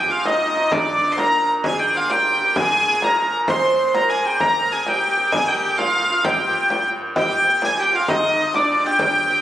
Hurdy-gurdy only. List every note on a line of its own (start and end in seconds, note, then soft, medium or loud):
0.00 0.11 G5 medium
0.11 0.26 F5 medium
0.26 0.72 D#5 medium
0.72 1.12 D5 medium
1.12 1.20 C6 medium
1.20 1.53 A#5 loud
1.65 1.79 G#5 loud
1.79 1.97 G5 medium
1.97 2.11 F5 medium
2.11 2.57 G5 loud
2.57 3.04 G#5 loud
3.04 3.35 A#5 loud
3.49 3.95 C6 loud
3.95 4.10 A#5 loud
4.10 4.26 G#5 medium
4.26 4.41 G5 medium
4.41 4.72 A#5 loud
4.72 4.88 G#5 medium
4.88 5.33 G5 medium
5.32 5.48 G#5 loud
5.48 5.78 G5 medium
5.78 6.25 F5 loud
6.25 6.86 G5 medium
7.18 7.65 G5 loud
7.65 7.80 G#5 medium
7.80 7.96 G5 medium
7.96 8.10 F5 medium
8.10 8.55 D#5 loud
8.55 8.87 D5 medium
8.87 9.01 G5 loud
9.01 9.41 G5 loud